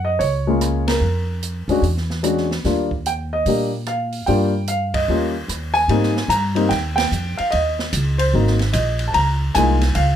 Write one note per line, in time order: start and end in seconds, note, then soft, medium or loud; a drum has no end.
0.00 0.17 F#2 medium
0.05 0.20 D#5 medium
0.19 0.97 C#2 medium
0.19 0.83 C#5 medium
0.19 open hi-hat soft
0.47 0.99 G#3 medium
0.47 1.00 A#3 medium
0.47 1.00 C#4 medium
0.47 1.00 F4 medium
0.61 cross-stick soft
0.61 closed hi-hat soft
0.87 2.05 A#4 medium
0.87 snare medium
0.87 ride medium
1.01 1.64 F2 medium
1.42 closed hi-hat soft
1.68 1.81 D#2 medium
1.68 1.82 G#3 medium
1.68 1.82 C#4 medium
1.68 1.83 D4 medium
1.68 1.83 F#4 medium
1.68 open hi-hat soft
1.82 2.60 E2 medium
1.82 open hi-hat soft
1.97 snare soft
2.10 snare soft
2.23 2.47 G#3 medium
2.23 2.47 C#4 soft
2.23 2.48 D4 soft
2.23 2.48 F#4 medium
2.23 cross-stick medium
2.23 closed hi-hat soft
2.37 snare soft
2.51 snare soft
2.64 3.42 D#2 medium
2.64 2.88 G3 soft
2.64 2.88 A#3 soft
2.64 2.89 D4 soft
2.64 2.89 F4 medium
2.64 snare soft
2.64 open hi-hat soft
2.91 kick soft
3.06 3.12 G5 medium
3.06 closed hi-hat soft
3.33 3.70 D#5 medium
3.46 4.23 A#2 medium
3.46 3.70 G3 soft
3.46 3.70 A#3 soft
3.46 3.70 D4 soft
3.46 3.71 G4 medium
3.46 open hi-hat soft
3.86 4.29 F5 medium
3.86 cross-stick medium
3.86 closed hi-hat soft
4.12 open hi-hat soft
4.26 5.05 G2 medium
4.26 4.51 G3 medium
4.26 4.51 A#3 medium
4.26 4.51 D4 medium
4.26 4.51 F4 medium
4.26 4.64 G5 medium
4.26 open hi-hat soft
4.67 4.95 F5 medium
4.67 closed hi-hat soft
4.94 5.45 D#5 medium
4.94 kick medium
4.94 ride medium
5.08 5.46 D#2 medium
5.08 5.32 G3 soft
5.08 5.33 A#3 soft
5.08 5.32 C#4 soft
5.08 5.33 F4 medium
5.48 5.86 D#2 medium
5.48 cross-stick soft
5.48 closed hi-hat soft
5.74 6.31 G#5 loud
5.74 open hi-hat soft
5.88 6.28 G#2 medium
5.88 6.13 G3 medium
5.88 6.13 A#3 medium
5.88 6.13 C4 soft
5.88 6.13 D#4 medium
5.88 ride soft
6.03 snare soft
6.16 snare soft
6.28 6.69 G2 medium
6.28 6.67 A#5 medium
6.28 hi-hat pedal medium
6.28 ride medium
6.55 6.68 G3 medium
6.55 6.68 A#3 medium
6.55 6.69 C4 medium
6.55 6.69 D#4 medium
6.55 ride soft
6.69 7.10 D#2 medium
6.69 6.94 G5 medium
6.69 snare soft
6.69 ride medium
6.96 7.38 G5 medium
6.96 snare medium
6.96 ride medium
7.11 7.36 F2 medium
7.11 hi-hat pedal soft
7.38 7.52 F5 medium
7.38 muted upright bass stroke soft
7.38 ride soft
7.51 7.92 D#2 medium
7.51 8.14 D#5 medium
7.51 ride soft
7.79 snare soft
7.93 8.32 C#2 medium
7.93 hi-hat pedal medium
7.93 ride medium
8.18 8.75 C5 medium
8.18 ride medium
8.34 8.73 G#1 medium
8.34 8.57 F#3 medium
8.34 8.57 A#3 soft
8.34 8.57 C4 soft
8.34 8.58 D#4 medium
8.47 snare soft
8.59 snare soft
8.59 ride soft
8.73 9.13 A#1 medium
8.73 9.06 D#5 medium
8.73 hi-hat pedal medium
8.73 ride medium
8.99 ride soft
9.08 9.13 A5 medium
9.14 9.54 C#2 medium
9.14 9.56 A#5 medium
9.14 ride medium
9.55 9.95 C2 medium
9.55 9.79 G#3 medium
9.55 9.79 A#3 soft
9.55 9.80 D#4 medium
9.55 9.80 F4 medium
9.55 9.93 G#5 medium
9.55 hi-hat pedal medium
9.55 ride medium
9.81 snare soft
9.81 ride soft
9.95 10.16 C#2 medium
9.95 10.16 F5 medium
9.95 ride medium